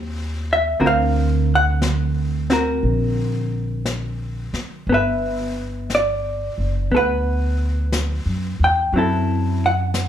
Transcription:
Already playing: upright bass D#2, hollow-body jazz guitar A3 C4 G4 C5
0.53 hollow-body jazz guitar E5
0.80 upright bass D2, hollow-body jazz guitar D3 C4 F#4 A#4, brush sweep
0.86 hollow-body jazz guitar C5 F5
1.55 hollow-body jazz guitar F#5
1.82 brush sweep, snare, hi-hat pedal
2.50 hollow-body jazz guitar C4 F#4 A#4, snare
2.83 upright bass A#1, brush sweep
3.86 brush sweep, snare, hi-hat pedal
4.53 muted upright bass stroke, snare
4.87 upright bass G1, hollow-body jazz guitar B3, brush sweep
4.94 hollow-body jazz guitar B4 E5
5.90 brush sweep, snare, hi-hat pedal
5.95 hollow-body jazz guitar D5
6.58 upright bass F#1
6.91 upright bass D2, hollow-body jazz guitar B3 A4, brush sweep
6.96 hollow-body jazz guitar B4 F#5
7.92 brush sweep, snare, hi-hat pedal
8.26 upright bass F#2
8.60 upright bass E2
8.64 hollow-body jazz guitar G5
8.92 upright bass F#2, hollow-body jazz guitar F#3 C4, brush sweep
8.97 hollow-body jazz guitar E4 A4
9.66 hollow-body jazz guitar F#5
9.94 brush sweep, snare, hi-hat pedal

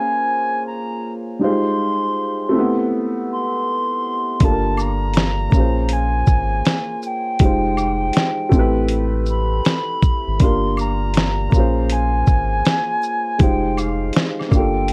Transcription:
Already playing: upright piano A#3 C#4 F4 G#4 C5, flute G#5
0.67 flute A#5
1.39 upright piano G3 D#4 F4, flute C6
1.43 upright piano G#3 G4 C5
2.49 upright piano A3 C4
2.54 upright piano E4 G4
2.59 upright piano B3
3.32 flute C6
4.40 sub bass G1, upright piano A#3 D4 F4 G4, flute A5, kick, closed hi-hat, shaker
4.45 upright piano A4
4.51 upright piano A#4
4.77 high woodblock, shaker
4.79 flute A#5, shaker
5.14 snare, closed hi-hat, shaker
5.50 sub bass A#1, upright piano A#3 C#4, kick, shaker
5.53 upright piano F4 G#4, shaker
5.60 upright piano C5
5.89 flute G#5, closed hi-hat, shaker
6.26 sub bass G#1, kick, shaker
6.65 snare, closed hi-hat, shaker
7.02 shaker
7.07 flute G5
7.39 sub bass F1, upright piano G#3 D#4 F4, kick, closed hi-hat, shaker
7.43 upright piano G4 C5
7.77 high woodblock, shaker
8.13 snare, closed hi-hat, shaker
8.49 sub bass A1, upright piano A3 C4, kick, shaker
8.54 upright piano E4 G4
8.59 upright piano B4
8.89 closed hi-hat, shaker
9.26 flute B5, shaker
9.65 snare, closed hi-hat, shaker
10.02 kick, shaker
10.27 sub bass G#1
10.39 sub bass G1, upright piano A#3 D4 F4 G4, flute C6, kick, closed hi-hat, shaker
10.44 upright piano A#4
10.77 high woodblock, shaker
10.79 flute A#5, shaker
11.14 snare, closed hi-hat, shaker
11.50 sub bass A#1, upright piano A#3 C#4, kick, shaker
11.54 upright piano F4 G#4, shaker
11.59 upright piano C5
11.89 flute G#5, closed hi-hat, shaker
12.26 sub bass G#1, kick, shaker
12.65 snare, closed hi-hat, shaker
13.02 shaker
13.03 shaker
13.38 sub bass F1, upright piano G#3 D#4 F4, flute G5, kick, closed hi-hat, shaker
13.43 upright piano G4 C5
13.77 flute F5, closed hi-hat, high woodblock, shaker
14.13 snare, closed hi-hat, shaker
14.40 snare, high woodblock
14.49 sub bass G1, upright piano A#3 D4, kick, high woodblock, shaker
14.53 upright piano F4 G4, flute G5, shaker
14.59 upright piano A4
14.88 closed hi-hat

